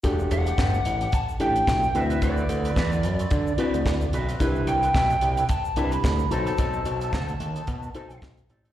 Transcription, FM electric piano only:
X:1
M:4/4
L:1/8
Q:"Swing 16ths" 1/4=110
K:Em
V:1 name="FM electric piano"
[DFGA]2 z3 [DEGA]2 [CEFB]- | [CEFB]2 z3 [CEFB]2 z | [DEG^AB]2 z3 [DEGAB]2 [^DF=Ac]- | [^DFAc]2 z3 [DFAc]2 z |]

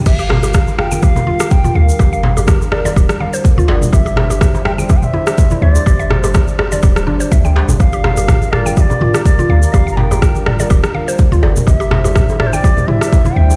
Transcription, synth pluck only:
X:1
M:4/4
L:1/16
Q:"Swing 16ths" 1/4=124
K:Gdor
V:1 name="Synth pluck"
G G z G G z f g G z F G z F f z | G f z G G z d d G z f c z F d z | G G z G G z e g G z E G z E e z | G e z G G z d d G z D c e g G z |
G G z G G z f g G z F G z F f z | G f z G G z d d G z f c z F d z | G G z G G z e g G z E G z E e z |]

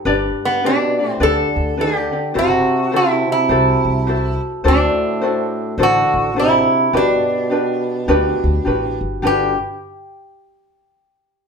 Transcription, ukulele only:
X:1
M:4/4
L:1/8
Q:"Swing" 1/4=105
K:G
V:1 name="Ukulele"
[DGBd]2 [DGBd] [DGd] [DGBd]2 [DGBd] [DGd] | [EFAc]2 [EFAc]2 [EFAc]2 [EFAc]2 | [DFAc]2 [DFAc]2 [DFAc]2 [DFAc]2 | [DFGB]2 [DFGB]2 [DFGB]2 [DFGB]2 |
[DFGB] z6 z |]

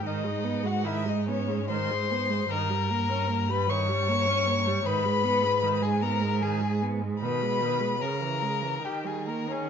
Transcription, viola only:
X:1
M:3/4
L:1/16
Q:1/4=75
K:G#m
V:1 name="Viola" clef=bass
D, G, B, G, D, G, B, G, D, G, B, G, | D, =G, A, C A, G, D, G, A, C A, G, | D, G, B, G, D, G, B, G, D, G, B, G, | D, G, D, G, C, E, G, E, D, =G, A, C |]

